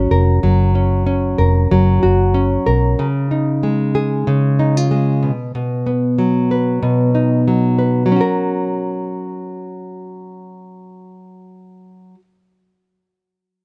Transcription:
Already playing: F#3 C#4 F#4 A#4
0.11 F1 A#4
0.43 F#1 F#3
0.75 C#4
1.06 C#4
1.38 F1 A#4
1.71 F#1 F#3
2.03 F#1 F#4
2.34 C#4
2.66 B1 A#4
2.99 C#3
3.31 D#4
3.63 G#3
3.95 G#4
4.27 C#3
4.59 D#4
4.77 F4
4.91 G#3
5.23 B2
5.55 B2
5.87 B3
6.18 F#3
6.51 B4
6.83 B2
7.15 D#4
7.48 F#3
7.79 B4
8.06 F#3
8.12 C#4
8.16 F#4
8.21 A#4

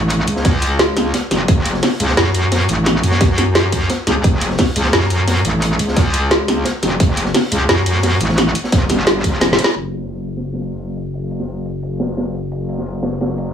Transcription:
Already playing: A1
0.10 closed hi-hat
0.27 C#2, closed hi-hat
0.36 snare
0.44 kick, snare, closed hi-hat
0.62 closed hi-hat
0.79 snare, closed hi-hat
0.97 snare, closed hi-hat
1.14 snare, closed hi-hat
1.31 F#1, snare, closed hi-hat
1.48 F#1, kick, closed hi-hat
1.66 closed hi-hat
1.74 snare
1.82 snare, closed hi-hat, open hi-hat
2.00 C#2, closed hi-hat
2.09 snare
2.17 F#2, snare, closed hi-hat
2.26 snare
2.35 closed hi-hat
2.52 snare, closed hi-hat
2.61 closed hi-hat
2.69 A1, closed hi-hat
2.86 snare, closed hi-hat
3.03 F#2, closed hi-hat
3.11 snare
3.21 kick, snare, closed hi-hat
3.38 snare, closed hi-hat
3.55 snare, closed hi-hat
3.72 kick, closed hi-hat
3.89 snare, closed hi-hat
4.07 C#2, snare, closed hi-hat
4.24 F#1, kick, closed hi-hat
4.41 closed hi-hat
4.50 snare
4.58 kick, snare, closed hi-hat, open hi-hat
4.76 C#2, closed hi-hat
4.84 snare
4.93 F#2, snare, closed hi-hat
5.02 snare
5.10 closed hi-hat
5.28 snare, closed hi-hat
5.37 closed hi-hat
5.45 A1, closed hi-hat
5.62 closed hi-hat
5.79 C#2, closed hi-hat
5.88 snare
5.97 kick, snare, closed hi-hat
6.13 closed hi-hat
6.31 snare, closed hi-hat
6.48 snare, closed hi-hat
6.65 snare, closed hi-hat
6.82 F#1, snare, closed hi-hat
7.00 F#1, kick, closed hi-hat
7.16 closed hi-hat
7.26 snare
7.34 snare, closed hi-hat, open hi-hat
7.52 C#2, closed hi-hat
7.69 F#2, snare, closed hi-hat
7.78 snare
7.86 closed hi-hat
7.95 snare
8.02 snare, closed hi-hat, open hi-hat
8.20 A1, closed hi-hat
8.29 snare
8.37 snare, closed hi-hat
8.55 closed hi-hat
8.64 snare
8.72 F#1, kick, snare, closed hi-hat
8.89 G1, snare, closed hi-hat
9.07 snare, closed hi-hat
9.24 F#1, kick, closed hi-hat
9.41 snare, closed hi-hat
9.53 snare
9.58 snare, closed hi-hat, open hi-hat
9.64 snare
9.76 F#1, closed hi-hat
9.93 closed hi-hat, cabasa
10.02 snare
10.10 closed hi-hat, open hi-hat
10.27 closed hi-hat, cabasa
10.37 snare
10.44 closed hi-hat
10.53 snare, cabasa
10.62 closed hi-hat, cabasa
10.79 closed hi-hat
10.88 closed hi-hat, cabasa
10.96 closed hi-hat, cabasa
11.14 closed hi-hat
11.22 cabasa
11.31 closed hi-hat, cabasa
11.39 snare
11.48 closed hi-hat
11.66 closed hi-hat, cabasa
11.83 closed hi-hat
11.91 cabasa
12.00 snare, closed hi-hat, open hi-hat, cabasa
12.17 snare, closed hi-hat, open hi-hat
12.26 cabasa
12.34 closed hi-hat, cabasa
12.52 closed hi-hat
12.60 cabasa
12.69 closed hi-hat, cabasa
12.78 snare
12.86 closed hi-hat, open hi-hat
13.03 snare, closed hi-hat, open hi-hat, cabasa
13.12 snare
13.21 snare, closed hi-hat, open hi-hat
13.29 snare, cabasa
13.38 closed hi-hat, cabasa

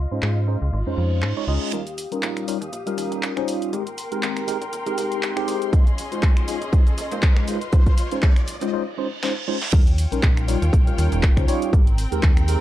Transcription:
Already playing: F4 D#5 C6
0.11 G#2 G#3 C#4 D#4 F4 C5
0.22 G#2, clap
0.47 G#3 C#4 D#4 F4 C5
0.62 C#2
0.73 G#1, reverse cymbal
0.86 F2 G#3 C#4 D#4 F4 C5
0.98 F2
1.22 G#2, clap
1.36 G#3 C#4 D#4 F4 C#5
1.47 C#2 G#3 C#4 D#4 F4 D#5
1.72 D#2 G3 C#4 D#4 F4 G4 A#4 F5 D#6, closed hi-hat, riser, shaker
1.87 closed hi-hat, shaker
1.98 open hi-hat, shaker
2.11 A#1 G3 C#4 D#4 F4 A#4, closed hi-hat, shaker
2.22 A#1, clap, closed hi-hat, shaker
2.37 finger snap, closed hi-hat, shaker
2.48 G3 C#4 D#4 F4 A#4, open hi-hat, shaker
2.61 D#2, closed hi-hat, shaker
2.72 A#1, closed hi-hat, shaker
2.86 G3 C#4 D#4 F4 A#4, closed hi-hat, shaker
2.97 D#2, open hi-hat, shaker
3.11 D#1, closed hi-hat, shaker
3.23 clap, closed hi-hat, shaker
3.36 C#2 G3 C#4 D#4 F4 C5, finger snap, closed hi-hat
3.48 open hi-hat, shaker
3.62 closed hi-hat, shaker
3.72 G#1 G#3 C4 D#4 G4 A#4 G5 C6, closed hi-hat, shaker
3.87 closed hi-hat, shaker
3.98 open hi-hat, shaker
4.11 D#2 G#3 C4 D#4 G4 A#4, closed hi-hat, shaker
4.23 D#2, clap, closed hi-hat, shaker
4.37 finger snap, closed hi-hat, shaker
4.47 G#3 C4 D#4 G4 A#4, open hi-hat, shaker
4.61 G#1, closed hi-hat, shaker
4.73 D#1, closed hi-hat, shaker
4.86 G#3 C4 D#4 G4 A#4, closed hi-hat, shaker
4.97 C2, open hi-hat, shaker
5.12 closed hi-hat, shaker
5.23 D#2, clap, closed hi-hat, shaker
5.36 G#3 C4 D#4 G4 C5, finger snap, closed hi-hat
5.48 G#1, open hi-hat, shaker
5.62 closed hi-hat, shaker
5.72 G#3 C#4 F4 G#4 C5 D#5, kick, closed hi-hat, shaker
5.87 closed hi-hat, shaker
5.98 open hi-hat, shaker
6.12 F2 G#3 C#4 D#4 F4 C5, closed hi-hat, shaker
6.23 F2, kick, clap, closed hi-hat, shaker
6.37 finger snap, closed hi-hat, shaker
6.48 G#3 C#4 D#4 F4 C5, open hi-hat, shaker
6.61 A#1, closed hi-hat, shaker
6.73 F2 G#3 C#4 D#4 F4 C5, kick, closed hi-hat, shaker
6.87 closed hi-hat, shaker
6.98 A#1, open hi-hat, shaker
7.12 A#2 G#3 C#4 D#4 F4 C5, closed hi-hat, shaker
7.22 kick, clap, closed hi-hat, shaker
7.37 G#2, finger snap, closed hi-hat
7.48 G#3 C#4 D#4 F4 C5 C6, open hi-hat, shaker
7.61 closed hi-hat, shaker
7.73 C#2 G#3 C#4 D#4 F4 C5, kick, closed hi-hat, shaker
7.86 kick, closed hi-hat, shaker
7.98 open hi-hat, shaker
8.11 G#2 G#3 C#4 D#4 F4 C5, closed hi-hat, shaker
8.22 G#2 G#3 C#4 D#4 F4 C5, kick, clap, closed hi-hat, shaker
8.36 finger snap, closed hi-hat, shaker
8.48 open hi-hat, shaker
8.61 C#2 G#3 C#4 D#4 F4 C5, closed hi-hat, shaker
8.73 G#3 C#4 D#4 F4 C5, reverse cymbal
8.98 G#3 C#4 D#4 F4 C5
9.23 G#3 C#4 D#4 F4 C5, snare
9.47 G#3 C#4 D#4 F4 C5
9.62 snare
9.73 D#2 G3 C#4 D#4 F4 A#4 C#5 G5, kick, closed hi-hat, crash, shaker
9.87 closed hi-hat, shaker
9.98 open hi-hat, shaker
10.12 A#1 G3 C#4 D#4 F4 A#4, closed hi-hat, shaker
10.23 A#1, kick, clap, closed hi-hat, shaker
10.37 finger snap, closed hi-hat, shaker
10.48 G3 C#4 D#4 F4 A#4, open hi-hat, shaker
10.62 D#2, closed hi-hat, shaker
10.73 A#1, kick, closed hi-hat, shaker
10.87 G3 C#4 D#4 F4 A#4, closed hi-hat, shaker
10.98 D#2, open hi-hat, shaker
11.12 D#1, closed hi-hat, shaker
11.23 kick, clap, closed hi-hat, shaker
11.36 C#2 G3 C#4 D#4 F4 C5, finger snap, kick, closed hi-hat, shaker
11.48 G3 C#4 D#4 F4 C#5, open hi-hat, shaker
11.62 closed hi-hat, shaker
11.73 G#1 G#3 C4 D#4 G4 A#4 G5, kick, closed hi-hat, shaker
11.87 closed hi-hat, shaker
11.98 open hi-hat, shaker
12.12 D#2 G#3 C4 D#4 G4 A#4, closed hi-hat, shaker
12.23 D#2, kick, clap, closed hi-hat, shaker
12.37 finger snap, closed hi-hat, shaker
12.48 G#3 C4 D#4 G4 A#4, open hi-hat, shaker

